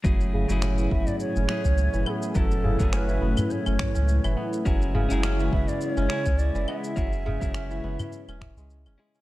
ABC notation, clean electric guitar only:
X:1
M:4/4
L:1/16
Q:"Swing 16ths" 1/4=104
K:F#m
V:1 name="Clean electric guitar"
[F,A,CEG]3 [F,A,CEG]6- [F,A,CEG] [F,A,CEG]6 | [F,A,CEA]3 [F,A,CEG]12- [F,A,CEG] | [CEG]3 [CEG]6- [CEG] [CEG]6 | [CEG]3 [CEG]8- [CEG]3 [CEG]2 |]